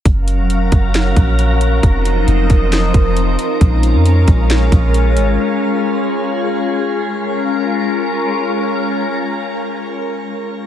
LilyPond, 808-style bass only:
\new Staff \with { instrumentName = "808-style bass" } { \clef bass \time 4/4 \key bes \minor \tempo 4 = 135 ges,,8. f,,8. ges,,4 bes,,4. | f,,4 f,,8 f,,4 f,,4 r8 | bes,,8. f,8. bes,,4 bes,,4 aes,,8 | r1 |
r1 | r1 | }